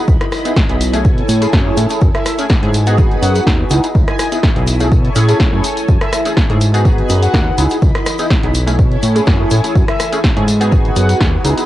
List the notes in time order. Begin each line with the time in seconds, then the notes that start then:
Already playing: E4 D#5 B5
0.08 C#2, kick, shaker
0.21 cross-stick, closed hi-hat
0.32 cross-stick, open hi-hat, tambourine, shaker
0.45 B3 D#4 E4 G#4, closed hi-hat, tambourine, shaker
0.56 kick, snare, tambourine, shaker
0.69 B1 B3 D#4 E4 G#4, closed hi-hat
0.81 A4 C#5 G#5, open hi-hat, tambourine, shaker
0.93 A3 C#4 E4 G#4, closed hi-hat, tambourine, shaker
1.05 B2, kick, tambourine, shaker
1.18 closed hi-hat
1.28 A2, open hi-hat, tambourine, shaker
1.41 A3 C#4 E4 G#4, closed hi-hat, tambourine, shaker
1.53 F#2, kick, snare, tambourine, shaker
1.66 A3 C#4 E4 G#4
1.77 A2, open hi-hat, tambourine, shaker
1.89 A3 C#4 E4 G#4, closed hi-hat, tambourine, shaker
2.01 F#2 G#5, kick, tambourine, shaker
2.15 E5, cross-stick, closed hi-hat
2.26 cross-stick, open hi-hat, tambourine, shaker
2.38 A3 C#4 E4 G#4, closed hi-hat, tambourine, shaker
2.49 kick, snare, tambourine, shaker
2.62 G#2 A3 C#4 E4 G#4, closed hi-hat
2.74 F#4 B4, open hi-hat, tambourine, shaker
2.86 B3 D#4 F#4 G#4, closed hi-hat, tambourine, shaker
2.97 G#1 B3 D#4 F#4 G#4, kick, tambourine, shaker
3.11 closed hi-hat
3.22 F#2 F#5, open hi-hat, tambourine, shaker
3.35 closed hi-hat, tambourine, shaker
3.47 D#2, kick, snare, tambourine, shaker
3.70 C#2 B3 D#4 E4 G#4 D#5 B5, open hi-hat, tambourine, shaker
3.83 B3 D#4 E4 G#4, closed hi-hat, tambourine, shaker
3.95 C#2, kick, tambourine, shaker
4.08 G#5, cross-stick, closed hi-hat
4.19 G#5, cross-stick, open hi-hat, tambourine, shaker
4.32 B3 D#4 E4 G#4, closed hi-hat, tambourine, shaker
4.43 kick, snare, tambourine, shaker
4.56 B1 B3 D#4 E4 G#4, closed hi-hat
4.67 A4 C#5 G#5, open hi-hat, tambourine, shaker
4.80 A3 C#4 E4 G#4, closed hi-hat, tambourine, shaker
4.92 B2, kick, tambourine, shaker
5.05 closed hi-hat
5.15 A2 A3 C#4 E4 G#4, open hi-hat, tambourine, shaker
5.28 A3 C#4 E4 G#4, closed hi-hat, tambourine, shaker
5.40 kick, snare, tambourine, shaker
5.52 F#2 A3 C#4 E4 G#4
5.64 open hi-hat, tambourine, shaker
5.77 closed hi-hat, tambourine, shaker
5.88 F#2 E4, kick, tambourine, shaker
6.01 E5, cross-stick, closed hi-hat
6.13 cross-stick, open hi-hat, tambourine, shaker
6.25 A3 C#4 E4 G#4, closed hi-hat, tambourine, shaker
6.37 kick, snare, tambourine, shaker
6.50 G#2 A3 C#4 E4 G#4, closed hi-hat
6.61 F#4 B4 G#5, open hi-hat, tambourine, shaker
6.74 B3 D#4 F#4 G#4, closed hi-hat, tambourine, shaker
6.85 G#1 B3 D#4 F#4 G#4, kick, tambourine, shaker
6.98 closed hi-hat
7.09 F#2, open hi-hat, tambourine, shaker
7.22 F#5, closed hi-hat, tambourine, shaker
7.34 D#2, kick, snare, tambourine, shaker
7.57 C#2 B3 D#4 E4 G#4 D#5 B5, open hi-hat, tambourine, shaker
7.70 B3 D#4 E4 G#4, closed hi-hat, tambourine, shaker
7.82 C#2, kick, tambourine, shaker
7.95 cross-stick, closed hi-hat
8.06 cross-stick, open hi-hat, tambourine, shaker
8.18 B3 D#4 E4 G#4, closed hi-hat, tambourine, shaker
8.30 kick, snare, shaker
8.43 B1 B3 D#4 E4 G#4, closed hi-hat
8.54 E4 A4 C#5 G#5, open hi-hat, tambourine, shaker
8.67 A3 C#4 E4 G#4, closed hi-hat, tambourine, shaker
8.79 B2, kick, tambourine, shaker
8.91 closed hi-hat
9.02 A2, open hi-hat, tambourine, shaker
9.15 A3 C#4 E4 G#4, closed hi-hat, tambourine, shaker
9.26 F#2, kick, snare, tambourine, shaker
9.39 A3 C#4 E4 G#4
9.50 A2, open hi-hat, tambourine, shaker
9.63 A3 C#4 E4 G#4, closed hi-hat, tambourine, shaker
9.75 F#2, kick, tambourine, shaker
9.88 E5, cross-stick, closed hi-hat
10.00 cross-stick, open hi-hat, tambourine, shaker
10.12 A3 C#4 E4 G#4, closed hi-hat, tambourine, shaker
10.24 kick, snare, tambourine, shaker
10.36 G#2 A3 C#4 E4 G#4, closed hi-hat
10.48 F#4 B4, open hi-hat, tambourine, shaker
10.60 B3 D#4 F#4 G#4, closed hi-hat, tambourine, shaker
10.71 G#1 B3 D#4 F#4 G#4, kick, tambourine, shaker
10.85 closed hi-hat
10.96 F#2 F#5, open hi-hat, tambourine, shaker
11.09 closed hi-hat, tambourine, shaker
11.21 D#2, kick, snare, shaker
11.44 C#2 B3 D#4 E4 G#4 D#5 B5, open hi-hat, tambourine, shaker
11.57 B3 D#4 E4 G#4, closed hi-hat, tambourine, shaker